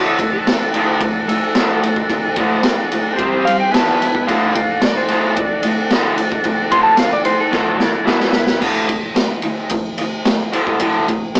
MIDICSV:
0, 0, Header, 1, 5, 480
1, 0, Start_track
1, 0, Tempo, 544959
1, 1834, Time_signature, 4, 2, 24, 8
1, 10040, End_track
2, 0, Start_track
2, 0, Title_t, "Electric slide guitar"
2, 0, Program_c, 0, 29
2, 50, Note_on_c, 0, 69, 90
2, 273, Note_off_c, 0, 69, 0
2, 290, Note_on_c, 0, 69, 85
2, 1097, Note_off_c, 0, 69, 0
2, 1128, Note_on_c, 0, 69, 96
2, 2527, Note_off_c, 0, 69, 0
2, 3039, Note_on_c, 0, 77, 102
2, 3153, Note_off_c, 0, 77, 0
2, 3170, Note_on_c, 0, 79, 83
2, 3307, Note_off_c, 0, 79, 0
2, 3307, Note_on_c, 0, 81, 100
2, 3757, Note_off_c, 0, 81, 0
2, 3765, Note_on_c, 0, 77, 93
2, 3993, Note_off_c, 0, 77, 0
2, 4019, Note_on_c, 0, 77, 89
2, 4240, Note_off_c, 0, 77, 0
2, 4268, Note_on_c, 0, 74, 98
2, 4369, Note_off_c, 0, 74, 0
2, 4379, Note_on_c, 0, 72, 104
2, 4717, Note_off_c, 0, 72, 0
2, 4757, Note_on_c, 0, 74, 107
2, 4969, Note_off_c, 0, 74, 0
2, 5916, Note_on_c, 0, 84, 99
2, 6014, Note_off_c, 0, 84, 0
2, 6017, Note_on_c, 0, 81, 97
2, 6141, Note_off_c, 0, 81, 0
2, 6157, Note_on_c, 0, 77, 84
2, 6271, Note_off_c, 0, 77, 0
2, 6280, Note_on_c, 0, 74, 89
2, 6386, Note_off_c, 0, 74, 0
2, 6389, Note_on_c, 0, 72, 95
2, 6507, Note_off_c, 0, 72, 0
2, 6523, Note_on_c, 0, 69, 88
2, 6634, Note_off_c, 0, 69, 0
2, 6636, Note_on_c, 0, 65, 95
2, 6867, Note_off_c, 0, 65, 0
2, 6870, Note_on_c, 0, 64, 100
2, 7569, Note_off_c, 0, 64, 0
2, 10040, End_track
3, 0, Start_track
3, 0, Title_t, "Transistor combo organ"
3, 0, Program_c, 1, 18
3, 0, Note_on_c, 1, 62, 65
3, 0, Note_on_c, 1, 66, 58
3, 0, Note_on_c, 1, 69, 71
3, 2760, Note_on_c, 1, 60, 83
3, 2762, Note_on_c, 1, 67, 75
3, 2775, Note_off_c, 1, 62, 0
3, 2782, Note_off_c, 1, 66, 0
3, 2786, Note_on_c, 1, 72, 90
3, 2795, Note_off_c, 1, 69, 0
3, 3258, Note_off_c, 1, 60, 0
3, 3259, Note_off_c, 1, 67, 0
3, 3265, Note_on_c, 1, 59, 66
3, 3270, Note_on_c, 1, 64, 61
3, 3271, Note_off_c, 1, 72, 0
3, 3273, Note_on_c, 1, 71, 75
3, 3750, Note_off_c, 1, 59, 0
3, 3753, Note_off_c, 1, 64, 0
3, 3754, Note_off_c, 1, 71, 0
3, 3761, Note_on_c, 1, 66, 60
3, 3769, Note_on_c, 1, 62, 68
3, 3785, Note_on_c, 1, 69, 78
3, 7080, Note_off_c, 1, 66, 0
3, 7084, Note_off_c, 1, 62, 0
3, 7092, Note_off_c, 1, 69, 0
3, 7106, Note_on_c, 1, 71, 70
3, 7108, Note_on_c, 1, 64, 59
3, 7116, Note_on_c, 1, 59, 67
3, 7589, Note_off_c, 1, 71, 0
3, 7590, Note_off_c, 1, 64, 0
3, 7594, Note_off_c, 1, 59, 0
3, 10040, End_track
4, 0, Start_track
4, 0, Title_t, "Overdriven electric guitar"
4, 0, Program_c, 2, 29
4, 0, Note_on_c, 2, 38, 97
4, 0, Note_on_c, 2, 45, 94
4, 0, Note_on_c, 2, 50, 99
4, 136, Note_off_c, 2, 38, 0
4, 143, Note_off_c, 2, 45, 0
4, 143, Note_off_c, 2, 50, 0
4, 169, Note_on_c, 2, 38, 77
4, 177, Note_on_c, 2, 45, 75
4, 376, Note_off_c, 2, 38, 0
4, 380, Note_off_c, 2, 45, 0
4, 423, Note_on_c, 2, 38, 84
4, 426, Note_on_c, 2, 45, 90
4, 624, Note_off_c, 2, 38, 0
4, 625, Note_off_c, 2, 45, 0
4, 650, Note_on_c, 2, 38, 89
4, 659, Note_on_c, 2, 45, 94
4, 663, Note_on_c, 2, 50, 100
4, 867, Note_off_c, 2, 38, 0
4, 872, Note_off_c, 2, 45, 0
4, 873, Note_off_c, 2, 50, 0
4, 884, Note_on_c, 2, 38, 78
4, 897, Note_on_c, 2, 45, 84
4, 1095, Note_off_c, 2, 38, 0
4, 1101, Note_off_c, 2, 45, 0
4, 1127, Note_on_c, 2, 45, 75
4, 1128, Note_on_c, 2, 38, 76
4, 1336, Note_off_c, 2, 45, 0
4, 1337, Note_off_c, 2, 38, 0
4, 1371, Note_on_c, 2, 38, 87
4, 1374, Note_on_c, 2, 45, 101
4, 1380, Note_on_c, 2, 50, 93
4, 1588, Note_off_c, 2, 38, 0
4, 1590, Note_off_c, 2, 45, 0
4, 1593, Note_off_c, 2, 50, 0
4, 1606, Note_on_c, 2, 38, 76
4, 1611, Note_on_c, 2, 45, 85
4, 1816, Note_off_c, 2, 38, 0
4, 1819, Note_off_c, 2, 45, 0
4, 1847, Note_on_c, 2, 38, 78
4, 1850, Note_on_c, 2, 45, 84
4, 2057, Note_off_c, 2, 38, 0
4, 2058, Note_off_c, 2, 45, 0
4, 2096, Note_on_c, 2, 38, 98
4, 2104, Note_on_c, 2, 45, 100
4, 2109, Note_on_c, 2, 50, 99
4, 2311, Note_off_c, 2, 38, 0
4, 2315, Note_off_c, 2, 45, 0
4, 2318, Note_off_c, 2, 50, 0
4, 2334, Note_on_c, 2, 38, 91
4, 2338, Note_on_c, 2, 45, 89
4, 2541, Note_off_c, 2, 38, 0
4, 2543, Note_off_c, 2, 45, 0
4, 2569, Note_on_c, 2, 38, 74
4, 2572, Note_on_c, 2, 45, 84
4, 2778, Note_off_c, 2, 38, 0
4, 2780, Note_off_c, 2, 45, 0
4, 2811, Note_on_c, 2, 48, 86
4, 2820, Note_on_c, 2, 55, 102
4, 2821, Note_on_c, 2, 60, 98
4, 3029, Note_off_c, 2, 48, 0
4, 3033, Note_off_c, 2, 55, 0
4, 3034, Note_off_c, 2, 60, 0
4, 3052, Note_on_c, 2, 48, 73
4, 3056, Note_on_c, 2, 55, 80
4, 3260, Note_off_c, 2, 48, 0
4, 3262, Note_off_c, 2, 55, 0
4, 3301, Note_on_c, 2, 40, 98
4, 3308, Note_on_c, 2, 47, 97
4, 3316, Note_on_c, 2, 52, 99
4, 3514, Note_off_c, 2, 40, 0
4, 3517, Note_off_c, 2, 47, 0
4, 3521, Note_off_c, 2, 52, 0
4, 3535, Note_on_c, 2, 40, 71
4, 3539, Note_on_c, 2, 47, 76
4, 3741, Note_off_c, 2, 40, 0
4, 3743, Note_off_c, 2, 47, 0
4, 3759, Note_on_c, 2, 38, 95
4, 3766, Note_on_c, 2, 45, 96
4, 3775, Note_on_c, 2, 50, 114
4, 3983, Note_off_c, 2, 38, 0
4, 3987, Note_off_c, 2, 45, 0
4, 3991, Note_off_c, 2, 50, 0
4, 4004, Note_on_c, 2, 38, 72
4, 4009, Note_on_c, 2, 45, 80
4, 4216, Note_off_c, 2, 38, 0
4, 4218, Note_off_c, 2, 45, 0
4, 4243, Note_on_c, 2, 38, 91
4, 4244, Note_on_c, 2, 45, 94
4, 4455, Note_off_c, 2, 38, 0
4, 4455, Note_off_c, 2, 45, 0
4, 4480, Note_on_c, 2, 38, 94
4, 4488, Note_on_c, 2, 45, 101
4, 4493, Note_on_c, 2, 50, 101
4, 4703, Note_off_c, 2, 38, 0
4, 4707, Note_off_c, 2, 45, 0
4, 4709, Note_off_c, 2, 50, 0
4, 4713, Note_on_c, 2, 38, 81
4, 4723, Note_on_c, 2, 45, 82
4, 4930, Note_off_c, 2, 38, 0
4, 4935, Note_off_c, 2, 45, 0
4, 4968, Note_on_c, 2, 38, 76
4, 4968, Note_on_c, 2, 45, 88
4, 5177, Note_off_c, 2, 38, 0
4, 5177, Note_off_c, 2, 45, 0
4, 5200, Note_on_c, 2, 38, 93
4, 5214, Note_on_c, 2, 45, 105
4, 5219, Note_on_c, 2, 50, 109
4, 5422, Note_off_c, 2, 38, 0
4, 5429, Note_off_c, 2, 45, 0
4, 5432, Note_off_c, 2, 50, 0
4, 5439, Note_on_c, 2, 45, 87
4, 5442, Note_on_c, 2, 38, 74
4, 5652, Note_off_c, 2, 45, 0
4, 5654, Note_off_c, 2, 38, 0
4, 5673, Note_on_c, 2, 38, 84
4, 5677, Note_on_c, 2, 45, 92
4, 5889, Note_off_c, 2, 38, 0
4, 5891, Note_off_c, 2, 45, 0
4, 5902, Note_on_c, 2, 38, 99
4, 5906, Note_on_c, 2, 45, 105
4, 5910, Note_on_c, 2, 50, 104
4, 6133, Note_off_c, 2, 38, 0
4, 6135, Note_off_c, 2, 45, 0
4, 6137, Note_off_c, 2, 50, 0
4, 6148, Note_on_c, 2, 38, 89
4, 6151, Note_on_c, 2, 45, 100
4, 6366, Note_off_c, 2, 38, 0
4, 6368, Note_off_c, 2, 45, 0
4, 6379, Note_on_c, 2, 38, 75
4, 6381, Note_on_c, 2, 45, 81
4, 6602, Note_off_c, 2, 38, 0
4, 6602, Note_off_c, 2, 45, 0
4, 6612, Note_on_c, 2, 38, 85
4, 6621, Note_on_c, 2, 45, 103
4, 6625, Note_on_c, 2, 50, 106
4, 6841, Note_off_c, 2, 38, 0
4, 6849, Note_off_c, 2, 45, 0
4, 6852, Note_on_c, 2, 38, 75
4, 6854, Note_off_c, 2, 50, 0
4, 6859, Note_on_c, 2, 45, 72
4, 7078, Note_off_c, 2, 38, 0
4, 7082, Note_off_c, 2, 45, 0
4, 7085, Note_on_c, 2, 40, 99
4, 7087, Note_on_c, 2, 47, 95
4, 7098, Note_on_c, 2, 52, 102
4, 7321, Note_off_c, 2, 40, 0
4, 7325, Note_off_c, 2, 47, 0
4, 7331, Note_off_c, 2, 52, 0
4, 7332, Note_on_c, 2, 40, 77
4, 7338, Note_on_c, 2, 47, 78
4, 7558, Note_off_c, 2, 40, 0
4, 7561, Note_off_c, 2, 47, 0
4, 7576, Note_on_c, 2, 38, 90
4, 7587, Note_on_c, 2, 45, 92
4, 7593, Note_on_c, 2, 50, 95
4, 7810, Note_off_c, 2, 38, 0
4, 7815, Note_off_c, 2, 45, 0
4, 7818, Note_off_c, 2, 50, 0
4, 7825, Note_on_c, 2, 38, 68
4, 7829, Note_on_c, 2, 45, 83
4, 8044, Note_off_c, 2, 38, 0
4, 8046, Note_off_c, 2, 45, 0
4, 8057, Note_on_c, 2, 38, 81
4, 8061, Note_on_c, 2, 45, 87
4, 8280, Note_off_c, 2, 38, 0
4, 8283, Note_off_c, 2, 45, 0
4, 8304, Note_on_c, 2, 38, 73
4, 8311, Note_on_c, 2, 45, 78
4, 8524, Note_off_c, 2, 38, 0
4, 8527, Note_off_c, 2, 45, 0
4, 8539, Note_on_c, 2, 38, 79
4, 8552, Note_on_c, 2, 45, 87
4, 8762, Note_off_c, 2, 38, 0
4, 8768, Note_off_c, 2, 45, 0
4, 8788, Note_on_c, 2, 38, 72
4, 8795, Note_on_c, 2, 45, 71
4, 9006, Note_off_c, 2, 38, 0
4, 9010, Note_off_c, 2, 45, 0
4, 9036, Note_on_c, 2, 38, 78
4, 9040, Note_on_c, 2, 45, 90
4, 9250, Note_off_c, 2, 38, 0
4, 9252, Note_off_c, 2, 45, 0
4, 9266, Note_on_c, 2, 38, 82
4, 9267, Note_on_c, 2, 45, 91
4, 9274, Note_on_c, 2, 50, 90
4, 9492, Note_off_c, 2, 38, 0
4, 9496, Note_off_c, 2, 45, 0
4, 9499, Note_off_c, 2, 50, 0
4, 9503, Note_on_c, 2, 38, 85
4, 9512, Note_on_c, 2, 45, 97
4, 9513, Note_on_c, 2, 50, 96
4, 9734, Note_off_c, 2, 38, 0
4, 9738, Note_off_c, 2, 45, 0
4, 9739, Note_off_c, 2, 50, 0
4, 9751, Note_on_c, 2, 45, 86
4, 9752, Note_on_c, 2, 38, 73
4, 9968, Note_off_c, 2, 45, 0
4, 9969, Note_off_c, 2, 38, 0
4, 9993, Note_on_c, 2, 38, 85
4, 10001, Note_on_c, 2, 45, 91
4, 10040, Note_off_c, 2, 38, 0
4, 10040, Note_off_c, 2, 45, 0
4, 10040, End_track
5, 0, Start_track
5, 0, Title_t, "Drums"
5, 166, Note_on_c, 9, 36, 88
5, 171, Note_on_c, 9, 51, 77
5, 254, Note_off_c, 9, 36, 0
5, 259, Note_off_c, 9, 51, 0
5, 415, Note_on_c, 9, 38, 119
5, 415, Note_on_c, 9, 51, 107
5, 503, Note_off_c, 9, 38, 0
5, 503, Note_off_c, 9, 51, 0
5, 651, Note_on_c, 9, 51, 74
5, 739, Note_off_c, 9, 51, 0
5, 887, Note_on_c, 9, 36, 116
5, 888, Note_on_c, 9, 51, 88
5, 975, Note_off_c, 9, 36, 0
5, 977, Note_off_c, 9, 51, 0
5, 1135, Note_on_c, 9, 51, 76
5, 1223, Note_off_c, 9, 51, 0
5, 1366, Note_on_c, 9, 38, 118
5, 1366, Note_on_c, 9, 51, 101
5, 1454, Note_off_c, 9, 38, 0
5, 1454, Note_off_c, 9, 51, 0
5, 1615, Note_on_c, 9, 51, 76
5, 1703, Note_off_c, 9, 51, 0
5, 1729, Note_on_c, 9, 36, 79
5, 1817, Note_off_c, 9, 36, 0
5, 1846, Note_on_c, 9, 36, 102
5, 1850, Note_on_c, 9, 51, 94
5, 1934, Note_off_c, 9, 36, 0
5, 1938, Note_off_c, 9, 51, 0
5, 2078, Note_on_c, 9, 51, 71
5, 2083, Note_on_c, 9, 36, 86
5, 2166, Note_off_c, 9, 51, 0
5, 2172, Note_off_c, 9, 36, 0
5, 2319, Note_on_c, 9, 38, 120
5, 2319, Note_on_c, 9, 51, 100
5, 2407, Note_off_c, 9, 38, 0
5, 2407, Note_off_c, 9, 51, 0
5, 2568, Note_on_c, 9, 51, 75
5, 2656, Note_off_c, 9, 51, 0
5, 2806, Note_on_c, 9, 36, 111
5, 2810, Note_on_c, 9, 51, 95
5, 2894, Note_off_c, 9, 36, 0
5, 2898, Note_off_c, 9, 51, 0
5, 3058, Note_on_c, 9, 51, 85
5, 3146, Note_off_c, 9, 51, 0
5, 3296, Note_on_c, 9, 38, 126
5, 3296, Note_on_c, 9, 51, 112
5, 3384, Note_off_c, 9, 38, 0
5, 3384, Note_off_c, 9, 51, 0
5, 3539, Note_on_c, 9, 51, 80
5, 3628, Note_off_c, 9, 51, 0
5, 3653, Note_on_c, 9, 36, 83
5, 3741, Note_off_c, 9, 36, 0
5, 3774, Note_on_c, 9, 36, 96
5, 3777, Note_on_c, 9, 51, 93
5, 3862, Note_off_c, 9, 36, 0
5, 3865, Note_off_c, 9, 51, 0
5, 4011, Note_on_c, 9, 51, 80
5, 4012, Note_on_c, 9, 36, 89
5, 4099, Note_off_c, 9, 51, 0
5, 4100, Note_off_c, 9, 36, 0
5, 4243, Note_on_c, 9, 38, 121
5, 4243, Note_on_c, 9, 51, 108
5, 4331, Note_off_c, 9, 38, 0
5, 4331, Note_off_c, 9, 51, 0
5, 4478, Note_on_c, 9, 51, 69
5, 4566, Note_off_c, 9, 51, 0
5, 4724, Note_on_c, 9, 51, 88
5, 4730, Note_on_c, 9, 36, 111
5, 4812, Note_off_c, 9, 51, 0
5, 4818, Note_off_c, 9, 36, 0
5, 4957, Note_on_c, 9, 51, 85
5, 5045, Note_off_c, 9, 51, 0
5, 5202, Note_on_c, 9, 38, 119
5, 5202, Note_on_c, 9, 51, 101
5, 5290, Note_off_c, 9, 38, 0
5, 5290, Note_off_c, 9, 51, 0
5, 5440, Note_on_c, 9, 51, 71
5, 5528, Note_off_c, 9, 51, 0
5, 5565, Note_on_c, 9, 36, 89
5, 5653, Note_off_c, 9, 36, 0
5, 5670, Note_on_c, 9, 51, 89
5, 5682, Note_on_c, 9, 36, 95
5, 5758, Note_off_c, 9, 51, 0
5, 5770, Note_off_c, 9, 36, 0
5, 5914, Note_on_c, 9, 51, 77
5, 5919, Note_on_c, 9, 36, 97
5, 6002, Note_off_c, 9, 51, 0
5, 6007, Note_off_c, 9, 36, 0
5, 6141, Note_on_c, 9, 38, 127
5, 6141, Note_on_c, 9, 51, 105
5, 6229, Note_off_c, 9, 38, 0
5, 6229, Note_off_c, 9, 51, 0
5, 6383, Note_on_c, 9, 51, 74
5, 6471, Note_off_c, 9, 51, 0
5, 6628, Note_on_c, 9, 38, 66
5, 6632, Note_on_c, 9, 36, 109
5, 6716, Note_off_c, 9, 38, 0
5, 6720, Note_off_c, 9, 36, 0
5, 6868, Note_on_c, 9, 38, 82
5, 6956, Note_off_c, 9, 38, 0
5, 7107, Note_on_c, 9, 38, 95
5, 7195, Note_off_c, 9, 38, 0
5, 7223, Note_on_c, 9, 38, 88
5, 7311, Note_off_c, 9, 38, 0
5, 7331, Note_on_c, 9, 38, 109
5, 7419, Note_off_c, 9, 38, 0
5, 7457, Note_on_c, 9, 38, 97
5, 7545, Note_off_c, 9, 38, 0
5, 7589, Note_on_c, 9, 49, 110
5, 7591, Note_on_c, 9, 36, 97
5, 7677, Note_off_c, 9, 49, 0
5, 7679, Note_off_c, 9, 36, 0
5, 7828, Note_on_c, 9, 51, 76
5, 7831, Note_on_c, 9, 36, 88
5, 7916, Note_off_c, 9, 51, 0
5, 7919, Note_off_c, 9, 36, 0
5, 8068, Note_on_c, 9, 38, 111
5, 8068, Note_on_c, 9, 51, 98
5, 8156, Note_off_c, 9, 38, 0
5, 8156, Note_off_c, 9, 51, 0
5, 8297, Note_on_c, 9, 51, 67
5, 8385, Note_off_c, 9, 51, 0
5, 8539, Note_on_c, 9, 51, 91
5, 8550, Note_on_c, 9, 36, 109
5, 8627, Note_off_c, 9, 51, 0
5, 8639, Note_off_c, 9, 36, 0
5, 8788, Note_on_c, 9, 51, 74
5, 8876, Note_off_c, 9, 51, 0
5, 9032, Note_on_c, 9, 38, 122
5, 9032, Note_on_c, 9, 51, 99
5, 9120, Note_off_c, 9, 38, 0
5, 9120, Note_off_c, 9, 51, 0
5, 9276, Note_on_c, 9, 51, 69
5, 9364, Note_off_c, 9, 51, 0
5, 9397, Note_on_c, 9, 36, 79
5, 9485, Note_off_c, 9, 36, 0
5, 9509, Note_on_c, 9, 51, 88
5, 9520, Note_on_c, 9, 36, 99
5, 9597, Note_off_c, 9, 51, 0
5, 9608, Note_off_c, 9, 36, 0
5, 9763, Note_on_c, 9, 36, 94
5, 9764, Note_on_c, 9, 51, 73
5, 9851, Note_off_c, 9, 36, 0
5, 9852, Note_off_c, 9, 51, 0
5, 10000, Note_on_c, 9, 38, 112
5, 10000, Note_on_c, 9, 51, 98
5, 10040, Note_off_c, 9, 38, 0
5, 10040, Note_off_c, 9, 51, 0
5, 10040, End_track
0, 0, End_of_file